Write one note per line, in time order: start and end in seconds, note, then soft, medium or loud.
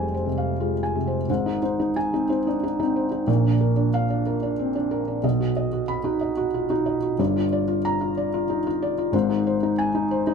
0.00 1.24 F1 medium
0.00 1.24 F2 medium
0.00 0.26 C3 soft
0.00 0.26 G3 soft
0.00 0.12 G#3 medium
0.00 0.14 C5 medium
0.00 0.37 F5 soft
0.00 0.83 G#5 soft
0.14 0.51 C5 soft
0.26 0.81 C3 soft
0.37 0.74 F5 medium
0.60 1.15 G#3 soft
0.60 0.97 F4 soft
0.83 1.20 G#5 medium
0.95 1.29 C3 soft
1.07 1.28 C5 medium
1.29 3.24 G#1 medium
1.29 3.25 G#2 medium
1.29 1.56 C5 medium
1.46 1.61 D#4 medium
1.62 1.78 D#4 medium
1.62 1.89 C5 medium
1.80 1.95 D#4 medium
1.96 2.12 D#4 medium
1.96 2.23 G#5 medium
2.13 2.39 C4 soft
2.13 2.28 D#4 medium
2.29 2.45 D#4 medium
2.29 2.56 C5 medium
2.47 2.62 D4 medium
2.47 2.62 D#4 medium
2.63 2.79 D4 soft
2.63 2.78 D#4 medium
2.80 3.06 C4 medium
2.80 3.05 D#4 medium
2.96 3.22 C5 medium
3.11 3.28 D#4 medium
3.27 5.19 A#1 medium
3.27 5.19 A#2 medium
3.27 3.54 A#4 medium
3.45 3.71 D4 medium
3.61 3.87 A#4 medium
3.76 4.03 D4 medium
3.94 4.20 F5 medium
4.10 4.36 D4 medium
4.27 4.53 A#4 medium
4.43 4.69 D4 medium
4.59 4.75 C4 soft
4.75 5.01 D4 medium
4.91 5.17 A#4 medium
5.08 5.24 D4 soft
5.23 7.15 B1 medium
5.23 7.15 B2 medium
5.23 5.50 D#5 medium
5.40 5.66 F#4 medium
5.56 5.82 D#5 medium
5.73 5.98 F#4 medium
5.88 6.14 B5 medium
6.04 6.31 D#4 medium
6.04 6.31 F#4 medium
6.21 6.47 D#5 medium
6.37 6.64 F#4 medium
6.54 6.70 F4 medium
6.70 6.96 D#4 medium
6.70 6.96 F#4 medium
6.86 7.12 D#5 medium
7.03 7.19 F#4 medium
7.19 9.09 G1 medium
7.19 9.09 G2 medium
7.19 7.45 D5 medium
7.36 7.61 F4 medium
7.52 7.78 D5 medium
7.68 7.94 F4 medium
7.85 8.10 A#5 medium
8.01 8.26 F4 medium
8.17 8.43 D5 medium
8.34 8.59 F4 medium
8.50 8.65 D#4 medium
8.67 8.91 F4 medium
8.82 9.07 D5 medium
8.98 9.14 F4 medium
9.12 10.34 G#1 medium
9.12 10.34 G#2 medium
9.12 9.39 C5 medium
9.30 9.55 D#4 medium
9.47 9.72 C5 medium
9.63 9.88 D#4 medium
9.78 10.04 G#5 medium
9.95 10.20 D#4 medium
10.11 10.34 C5 medium
10.27 10.34 D#4 medium